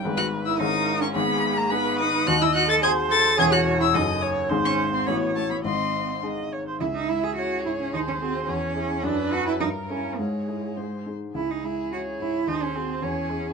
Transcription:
<<
  \new Staff \with { instrumentName = "Violin" } { \time 2/4 \key gis \minor \tempo 4 = 107 r16 fis'''8 e'''16 dis'''8. cis'''16 | b''8. ais''16 b''8 dis'''8 | \key cis \minor fis'''16 e'''16 fis'''16 a'''16 gis'''8 a'''8 | gis'''16 fis'''8 e'''16 dis'''8 r8 |
r16 cis'''8 bis''16 b''8 a''16 b''16 | bis''4 r4 | gis'2~ | gis'2 |
a'4 bes'4 | cis''4 bis'8 r8 | gis'2 | gis'4 gis'4 | }
  \new Staff \with { instrumentName = "Viola" } { \time 2/4 \key gis \minor b'4 ais'4 | gis'4 b'4 | \key cis \minor dis''4 bis'4 | cis''4 dis''8 cis''8 |
bis'4 cis''4 | dis''4 dis''8 cis''16 bis'16 | e''4 cis''4 | bis'4 cis''8 gis'8 |
b'4 bes'4 | gis'4. r8 | r4 cis''4 | bis'4 cis''8 gis'8 | }
  \new Staff \with { instrumentName = "Cello" } { \time 2/4 \key gis \minor r16 fis'8 e'16 dis'8. cis'16 | b8. ais16 b8 dis'8 | \key cis \minor fis'16 e'16 fis'16 a'16 gis'8 a'8 | gis'16 fis'8 e'16 dis'8 r8 |
r16 cis'8 bis16 b8 a16 b16 | bis4 r4 | e'16 dis'16 e'16 gis'16 fis'8 e'16 cis'16 | dis'16 cis'16 bis8 cis'4 |
d'8 fis'16 e'16 dis'8 des'8 | gis4. r8 | e'16 dis'16 e'8 fis'8 e'8 | dis'16 cis'16 bis8 cis'4 | }
  \new Staff \with { instrumentName = "Grand piano" } { \time 2/4 \key gis \minor <gis,, gis, b dis' gis'>4 <gis,, gis, cis' e' gis'>4 | <gis,, gis,>4 <b dis' gis'>4 | \key cis \minor <dis, dis>4 <bis fis' gis'>4 | <e,, e, cis' e' gis'>4 <fis,, fis, dis' a'>4 |
<gis,, gis, dis' gis'>4 <a,, a, cis' fis'>4 | <gis,, gis,>4 <gis dis' gis'>4 | cis,8 gis8 e'8 gis,8 | dis,8 <fis' gis'>8 e,8 <e' gis'>8 |
fis,8 <d' fis'>8 g,8 <e' bes'>8 | gis,8 <e' gis'>8 gis,8 <dis' gis'>8 | cis,8 gis8 e'8 gis,8 | dis,8 <fis' gis'>8 e,8 <e' gis'>8 | }
>>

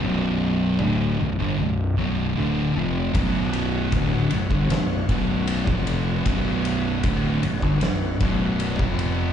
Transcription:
<<
  \new Staff \with { instrumentName = "Tonewheel organ" } { \time 4/4 \key b \minor \tempo 4 = 77 r1 | <b cis'' fis''>1~ | <b cis'' fis''>1 | }
  \new Staff \with { instrumentName = "Distorted electric guitar" } { \clef bass \time 4/4 \key b \minor <b,, fis, b,>4 <d, a, d>8 <b,, fis,>16 <g, d>16 <b,, fis,>8 <b,, fis, b,>8 <d, a, d>8 <eis, c eis>8 | <b,, fis, b,>4 <d, a, d>8 <b,, fis,>16 <g, d>16 <b,, fis,>8 <b,, fis, b,>8. <eis, c eis>8. | <b,, fis, b,>4 <d, a, d>8 <b,, fis,>16 <g, d>16 <b,, fis,>8 <b,, fis, b,>8. <eis, c eis>8. | }
  \new Staff \with { instrumentName = "Distorted electric guitar" } { \clef bass \time 4/4 \key b \minor <b,, fis, b,>4 <d, a, d>8 <b,, fis,>16 <g, d>16 <b,, fis,>8 <b,, fis, b,>8 <d, a, d>8 <eis, c eis>8 | <b,, fis, b,>4 <d, a, d>8 <b,, fis,>16 <g, d>16 <b,, fis,>8 <b,, fis, b,>8. <eis, c eis>8. | <b,, fis, b,>4 <d, a, d>8 <b,, fis,>16 <g, d>16 <b,, fis,>8 <b,, fis, b,>8. <eis, c eis>8. | }
  \new Staff \with { instrumentName = "Fingered electric bass" } { \clef bass \time 4/4 \key b \minor b,,,4 d,,8 b,,,16 g,,16 b,,,8 b,,,8 d,,8 eis,,8 | b,,,4 d,,8 b,,,16 g,,16 b,,,8 b,,,8. eis,,8. | b,,,4 d,,8 b,,,16 g,,16 b,,,8 b,,,8. eis,,8. | }
  \new DrumStaff \with { instrumentName = "Drums" } \drummode { \time 4/4 r4 r4 r4 r4 | <bd cymr>8 cymr8 <bd cymr>8 cymr16 bd16 <cymr sn>8 <bd cymr>8 cymr16 bd16 cymr8 | <bd cymr>8 cymr8 <bd cymr>8 cymr16 bd16 <cymr sn>8 <bd cymr>8 cymr16 bd16 cymr8 | }
>>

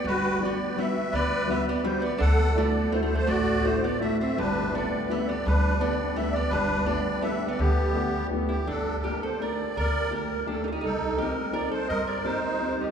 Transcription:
<<
  \new Staff \with { instrumentName = "Accordion" } { \time 3/4 \key g \major \tempo 4 = 167 << { b'4 d''4 e''4 | d''4 e''8 d''8 c''8 d''8 | fis''4 d''4 \tuplet 3/2 { c''8 c''8 c''8 } | d''4 c''8 d''8 e''8 e''8 |
b'4 d''4 e''8 d''8 | b'4 d''4 e''8 d''8 | b'4 d''4 e''8. d''16 | g'2 r8 g'8 |
\key g \minor a'4 bes'8 c''8 d''4 | d''4 bes'4 a'8 g'32 f'32 g'16 | a'4 bes'4 d''8 c''8 | ees''8 d''8 c''4. g'8 | } \\ { fis'4. r4. | b'4. r4. | a'4. r4. | fis'4. r4. |
d'4. r4. | d'4. r4. | d'4. r4. | b2 r4 |
d'4. r4. | bes'4. r4. | ees'4. r4. | bes'4 ees'4. r8 | } >> }
  \new Staff \with { instrumentName = "Upright piano" } { \time 3/4 \key g \major r4 <g b d' fis'>8 r8 <g b d' fis'>8 r8 | r4 <g b d' fis'>8 r8 <g b d' fis'>8 r8 | r4 <a d' e' fis'>8 r8 <a d' e' fis'>8 r8 | r4 <a d' e' fis'>8 r8 <a d' e' fis'>8 r8 |
r4 <a b d' g'>8 r8 <a b d' g'>8 r8 | r4 <a b d' g'>8 r8 <a b d' g'>8 r8 | r4 <a b d' g'>8 r8 <a b d' g'>8 r8 | r4 <a b d' g'>8 r8 <a b d' g'>8 r8 |
\key g \minor r4 <a bes d' g'>8 r8 <a bes d' g'>8 r8 | r4 <a bes d' g'>8 r8 <a bes d' g'>8 r8 | r4 <bes c' ees' g'>8 r8 <bes c' ees' g'>8 r8 | r4 <bes c' ees' g'>8 r8 <bes c' ees' g'>8 r8 | }
  \new Staff \with { instrumentName = "Hollow-body jazz guitar" } { \time 3/4 \key g \major g4 b4 b4 | b4 b8 b8 g8 b8 | d'4 a4 \tuplet 3/2 { a8 a8 a8 } | a4 a8 b8 a8 c'8 |
g4 b4 b8 b8 | g4 b4 b8 b8 | g4 b4 b8. b16 | d2 r8 e'8 |
\key g \minor d'4 g'8 a'8 bes'4 | bes'4 g'4 d'8 ees'32 d'32 ees'16 | ees'4 g'4 bes'8 a'8 | c''8 bes'8 g'4. ees'8 | }
  \new Staff \with { instrumentName = "Upright bass" } { \clef bass \time 3/4 \key g \major g,,2 r4 | d,2 r4 | d,2 r4 | a,,2 r4 |
g,,2 r4 | d,2 r4 | g,,2 r4 | d,2 r4 |
\key g \minor g,,2 r4 | d,2 r4 | c,2 r4 | g,2 r4 | }
>>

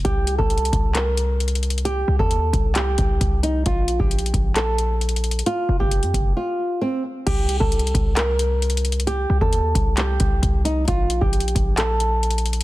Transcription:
<<
  \new Staff \with { instrumentName = "Nylon-string guitar" } { \time 4/4 \key c \dorian \tempo 4 = 133 g'8. a'4~ a'16 bes'2 | g'8. a'4~ a'16 g'4. ees'8 | f'8. g'4~ g'16 a'2 | f'8. g'4~ g'16 f'4 c'8 r8 |
g'8. a'4~ a'16 bes'2 | g'8. a'4~ a'16 g'4. ees'8 | f'8. g'4~ g'16 a'2 | }
  \new Staff \with { instrumentName = "808-style bass" } { \clef bass \time 4/4 \key c \dorian c,8. c,8. c,2~ c,8~ | c,8 c,16 ees,8. c,4 c,8 c,4 | bes,,8. bes,,8. bes,,2~ bes,,8 | r8 f,,16 f,,8 f,16 f,,8 r2 |
c,8. c,8. c,2~ c,8~ | c,8 c,16 ees,8. c,4 c,8 c,4 | bes,,8. bes,,8. bes,,2~ bes,,8 | }
  \new DrumStaff \with { instrumentName = "Drums" } \drummode { \time 4/4 <hh bd>8 hh16 bd16 \tuplet 3/2 { hh16 hh16 hh16 <hh bd>16 r16 r16 } <hc hh>8 hh8 \tuplet 3/2 { hh16 hh16 hh16 hh16 hh16 hh16 } | hh8. bd16 hh8 <hh bd>8 <hc hh>8 <hh bd>8 <hh bd>8 hh8 | <hh bd>8 hh16 bd16 \tuplet 3/2 { hh16 hh16 hh16 <hh bd>16 r16 r16 } <hc hh>8 hh8 \tuplet 3/2 { hh16 hh16 hh16 hh16 hh16 hh16 } | hh8. bd16 hh16 hh16 <hh bd>8 r4 r4 |
<cymc hh bd>8 hh16 bd16 \tuplet 3/2 { hh16 hh16 hh16 <hh bd>16 r16 r16 } <hc hh>8 hh8 \tuplet 3/2 { hh16 hh16 hh16 hh16 hh16 hh16 } | hh8. bd16 hh8 <hh bd>8 <hc hh>8 <hh bd>8 <hh bd>8 hh8 | <hh bd>8 hh16 bd16 \tuplet 3/2 { hh16 hh16 hh16 <hh bd>16 r16 r16 } <hc hh>8 hh8 \tuplet 3/2 { hh16 hh16 hh16 hh16 hh16 r16 } | }
>>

